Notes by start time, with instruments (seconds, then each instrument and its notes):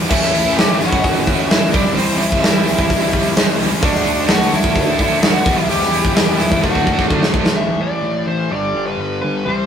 Already playing: overdriven electric guitar E3 G3 E4, distorted electric guitar E4
0.08 picked electric bass A1, distorted electric guitar A2 E3 A3 C#4 E4, overdriven electric guitar A2 E3 A3 C#4, lead electric guitar E4 E5, kick, crash
0.13 overdriven electric guitar E4
0.23 snare
0.32 picked electric bass A1, overdriven electric guitar A3 C#4 E4, open hi-hat
0.56 picked electric bass A1, overdriven electric guitar E3 A3 C#4 E4, lead electric guitar G4 G5, snare, open hi-hat
0.78 picked electric bass G1, distorted electric guitar A3 C#4 E4, lead electric guitar F#4 F#5, snare, open hi-hat
0.93 kick
1.04 picked electric bass A1, distorted electric guitar A2 E3 A3 C#4 E4, kick, open hi-hat
1.26 picked electric bass A1, overdriven electric guitar A3 C#4 E4, kick, open hi-hat
1.49 picked electric bass A1, overdriven electric guitar A2 E3 A3 C#4 E4, lead electric guitar E4 E5, snare, open hi-hat
1.70 lead electric guitar D4 D5, overdriven electric guitar E4
1.74 picked electric bass C2, distorted electric guitar C3 E3 G3 C4 E4, overdriven electric guitar C3 E3 G3 C4, kick, open hi-hat
1.94 picked electric bass C2, overdriven electric guitar C3 E3 G3 C4, lead electric guitar C4 C5, open hi-hat
1.98 overdriven electric guitar E4
2.18 picked electric bass C2, overdriven electric guitar C4 E4, lead electric guitar E4 E5, open hi-hat
2.22 overdriven electric guitar G3
2.32 kick
2.42 picked electric bass C2, overdriven electric guitar E3 G3 C4 E4, snare, open hi-hat
2.64 picked electric bass C2, distorted electric guitar C3 E3 G3 C4 E4, open hi-hat
2.79 kick
2.90 picked electric bass C2, kick, open hi-hat
3.11 overdriven electric guitar G3 C4 E4, kick, open hi-hat
3.34 overdriven electric guitar C3 E3 G3 C4 E4, picked electric bass C3, snare, open hi-hat
3.57 picked electric bass C#2, overdriven electric guitar G3 C4 E4, open hi-hat
3.80 picked electric bass D2, overdriven electric guitar D3 A3 D4 F#4, distorted electric guitar D3 A3 D4 F#4, lead electric guitar D4, kick, open hi-hat
3.85 lead electric guitar D5
3.95 snare
4.03 picked electric bass D2, overdriven electric guitar A3 D4 F#4, open hi-hat
4.27 picked electric bass D2, overdriven electric guitar D3 A3 D4 F#4, lead electric guitar F#4, snare, open hi-hat
4.31 lead electric guitar F#5
4.50 picked electric bass C2, distorted electric guitar A3 D4 F#4, lead electric guitar E4 E5, snare, open hi-hat
4.64 kick
4.75 picked electric bass D2, distorted electric guitar D3 A3 D4 F#4, kick, open hi-hat
4.96 picked electric bass D2, overdriven electric guitar A3 D4 F#4, kick, open hi-hat
5.19 picked electric bass D2, overdriven electric guitar D3 A3 D4 F#4, lead electric guitar F#4, snare, open hi-hat
5.24 lead electric guitar F#5
5.42 picked electric bass E1, distorted electric guitar E3 G3, overdriven electric guitar E3 G3 B3 E4, kick, open hi-hat
5.47 distorted electric guitar B3 E4
5.67 picked electric bass E1, overdriven electric guitar E3 G3 B3 E4, lead electric guitar G4, open hi-hat
5.71 lead electric guitar G5
5.82 snare
5.90 picked electric bass E1, overdriven electric guitar G3 B3 E4, open hi-hat
6.05 kick
6.15 picked electric bass E1, overdriven electric guitar E3 G3 B3 E4, snare, open hi-hat
6.38 picked electric bass E1, distorted electric guitar E3 G3 B3 E4, lead electric guitar E4 E5, snare, open hi-hat
6.42 distorted electric guitar G3
6.52 kick
6.61 picked electric bass D2, distorted electric guitar D3 A3 D4 F#4, overdriven electric guitar D3 F#3 A3 D4, lead electric guitar F#4 F#5, kick
6.75 kick
6.85 overdriven electric guitar F#3 A3 D4, kick
6.99 kick
7.09 overdriven electric guitar D3 F#3 A3 D4, picked electric bass D3, lead electric guitar E5, kick
7.23 snare
7.32 picked electric bass D2, overdriven electric guitar F#3 A3 D4, kick
7.46 snare
7.55 picked electric bass A1, distorted electric guitar A2 E3 A3, clean electric guitar A2 E3 C4, lead electric guitar E5
7.79 picked electric bass A1, clean electric guitar A2 E3, lead electric guitar D5
8.02 picked electric bass A1, clean electric guitar A2 E3
8.26 picked electric bass A1, clean electric guitar A2 E3 C4, lead electric guitar C5
8.50 picked electric bass G1, distorted electric guitar G2 D3 G3, clean electric guitar G2 D3 G3, lead electric guitar D5
8.74 picked electric bass G1, clean electric guitar G2 D3 G3
8.87 lead electric guitar B4
8.97 picked electric bass G1, clean electric guitar G2 D3
9.22 picked electric bass G1, clean electric guitar G2 D3, lead electric guitar B4
9.46 picked electric bass C2, distorted electric guitar C3 G3 C4, clean electric guitar C3 E3 G3, lead electric guitar C5